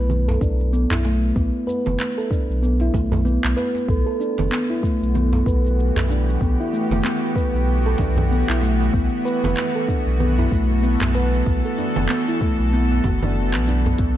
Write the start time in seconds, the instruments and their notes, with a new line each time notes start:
Already playing: sub bass B1, steel tongue drum B4
0.10 low conga, shaker
0.28 steel tongue drum A4, djembe tone
0.41 sub bass B1, steel tongue drum D4, kick, shaker
0.60 djembe tone, shaker
0.73 steel tongue drum B3, shaker
0.91 sub bass B1, steel tongue drum E4, clap, djembe bass, shaker
1.05 steel tongue drum A3, djembe slap, shaker
1.24 shaker
1.36 sub bass B1, steel tongue drum B3, kick, shaker
1.67 steel tongue drum B4, djembe tone, shaker
1.86 sub bass F#1, djembe slap, low conga, shaker
2.00 clap, shaker
2.18 steel tongue drum A4, shaker
2.31 steel tongue drum D4, kick, djembe tone, shaker
2.49 sub bass B1, shaker
2.63 steel tongue drum B3, shaker
2.80 steel tongue drum E4, djembe slap
2.93 sub bass B1, steel tongue drum A3, kick, djembe slap, low conga, shaker
3.12 djembe bass, low conga, shaker
3.25 steel tongue drum B3, shaker
3.44 sub bass B1, clap, shaker
3.57 steel tongue drum B4, djembe slap, shaker
3.75 djembe slap, shaker
3.88 sub bass B1, synth drone E3, singing bowl A4, kick, shaker
4.02 synth drone F#4
4.06 steel tongue drum A4
4.20 steel tongue drum D4, shaker
4.32 synth drone B3
4.38 sub bass F#1, djembe slap, low conga, shaker
4.52 steel tongue drum B3, clap, shaker
4.70 steel tongue drum E4
4.83 steel tongue drum A3, kick, shaker
4.92 synth drone G4
5.02 sub bass B1, shaker
5.15 steel tongue drum B3, low conga, shaker
5.33 djembe tone
5.46 sub bass B1, steel tongue drum B4, kick, shaker
5.65 djembe tone, shaker
5.79 shaker
5.96 sub bass B1, steel tongue drum A4, clap, djembe bass, shaker
6.09 steel tongue drum D4, djembe slap, shaker
6.29 shaker
6.41 sub bass B1, steel tongue drum B3, kick, shaker
6.60 steel tongue drum E4
6.73 steel tongue drum A3, shaker
6.90 sub bass F#1, djembe slap, low conga, shaker
7.05 steel tongue drum B3, clap, shaker
7.36 steel tongue drum B4, kick, shaker
7.54 sub bass B1, shaker
7.68 shaker
7.86 steel tongue drum A4, djembe slap
7.98 sub bass B1, steel tongue drum D4, kick, djembe slap, low conga, shaker
8.17 djembe bass, low conga, shaker
8.31 steel tongue drum B3, shaker
8.49 sub bass B1, steel tongue drum E4, clap, shaker
8.61 steel tongue drum A3, djembe slap, shaker
8.81 djembe slap, shaker
8.93 sub bass B1, steel tongue drum B3, kick, shaker
9.25 steel tongue drum B4, shaker
9.44 sub bass F#1, djembe slap, low conga, shaker
9.57 clap, shaker
9.76 steel tongue drum A4
9.84 synth drone A4
9.88 steel tongue drum D4, kick, shaker
10.06 sub bass B1, shaker
10.20 steel tongue drum B3, low conga, shaker
10.38 steel tongue drum E4, djembe tone
10.51 sub bass B1, steel tongue drum A3, kick, shaker
10.70 djembe tone, shaker
10.83 steel tongue drum B3, shaker
11.01 sub bass B1, clap, djembe bass, shaker
11.14 steel tongue drum B4, djembe slap, shaker
11.33 shaker
11.46 sub bass B1, kick, shaker
11.65 steel tongue drum A4, shaker
11.78 steel tongue drum D4, djembe tone, shaker
11.96 sub bass F#1, djembe slap, low conga, shaker
12.09 steel tongue drum B3, clap, shaker
12.28 steel tongue drum E4, shaker
12.41 steel tongue drum A3, kick, djembe tone, shaker
12.59 sub bass B1, shaker
12.73 steel tongue drum B3, shaker
12.91 djembe slap, shaker
13.04 sub bass F#1, steel tongue drum F#4, kick, djembe slap, djembe tone, low conga, shaker
13.23 steel tongue drum D4, low conga, djembe bass, shaker
13.36 shaker
13.54 sub bass B1, steel tongue drum B3, clap, shaker
13.67 steel tongue drum D4, djembe slap, shaker
13.86 steel tongue drum B3, djembe slap, djembe bass, shaker
13.98 sub bass B1, steel tongue drum B3, kick, closed hi-hat, shaker